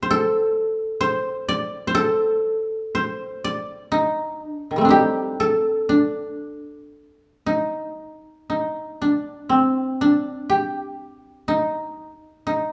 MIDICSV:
0, 0, Header, 1, 2, 480
1, 0, Start_track
1, 0, Tempo, 946372
1, 32, Time_signature, 4, 2, 24, 8
1, 991, Tempo, 980392
1, 2431, Tempo, 998336
1, 2911, Tempo, 1036269
1, 3871, Tempo, 1000000
1, 5311, Tempo, 974026
1, 6177, End_track
2, 0, Start_track
2, 0, Title_t, "Koto"
2, 0, Program_c, 0, 107
2, 0, Note_on_c, 0, 67, 95
2, 13, Note_on_c, 0, 72, 80
2, 54, Note_on_c, 0, 69, 104
2, 344, Note_off_c, 0, 67, 0
2, 508, Note_off_c, 0, 72, 0
2, 510, Note_on_c, 0, 72, 98
2, 754, Note_on_c, 0, 74, 108
2, 948, Note_off_c, 0, 72, 0
2, 950, Note_on_c, 0, 72, 77
2, 985, Note_off_c, 0, 69, 0
2, 987, Note_on_c, 0, 69, 108
2, 1476, Note_off_c, 0, 72, 0
2, 1478, Note_on_c, 0, 72, 92
2, 1545, Note_off_c, 0, 74, 0
2, 1721, Note_on_c, 0, 74, 84
2, 1919, Note_off_c, 0, 69, 0
2, 1952, Note_on_c, 0, 63, 81
2, 1981, Note_off_c, 0, 74, 0
2, 2221, Note_off_c, 0, 63, 0
2, 2221, Note_on_c, 0, 62, 81
2, 2318, Note_off_c, 0, 72, 0
2, 2339, Note_on_c, 0, 51, 35
2, 2366, Note_on_c, 0, 55, 37
2, 2374, Note_on_c, 0, 57, 44
2, 2390, Note_on_c, 0, 60, 46
2, 2408, Note_off_c, 0, 62, 0
2, 2408, Note_on_c, 0, 62, 53
2, 2427, Note_on_c, 0, 63, 51
2, 2436, Note_on_c, 0, 67, 82
2, 2437, Note_off_c, 0, 51, 0
2, 2674, Note_on_c, 0, 69, 83
2, 2703, Note_off_c, 0, 55, 0
2, 2908, Note_off_c, 0, 62, 0
2, 2910, Note_on_c, 0, 62, 70
2, 2938, Note_off_c, 0, 63, 0
2, 3398, Note_off_c, 0, 67, 0
2, 3564, Note_off_c, 0, 69, 0
2, 3615, Note_off_c, 0, 60, 0
2, 3639, Note_on_c, 0, 63, 68
2, 3667, Note_off_c, 0, 62, 0
2, 3731, Note_off_c, 0, 57, 0
2, 4124, Note_off_c, 0, 63, 0
2, 4126, Note_on_c, 0, 63, 54
2, 4375, Note_on_c, 0, 62, 59
2, 4404, Note_off_c, 0, 63, 0
2, 4605, Note_on_c, 0, 60, 59
2, 4851, Note_off_c, 0, 62, 0
2, 4853, Note_on_c, 0, 62, 69
2, 5085, Note_on_c, 0, 67, 74
2, 5565, Note_on_c, 0, 63, 73
2, 5594, Note_off_c, 0, 62, 0
2, 5867, Note_off_c, 0, 60, 0
2, 6049, Note_off_c, 0, 63, 0
2, 6051, Note_on_c, 0, 63, 64
2, 6084, Note_off_c, 0, 67, 0
2, 6177, Note_off_c, 0, 63, 0
2, 6177, End_track
0, 0, End_of_file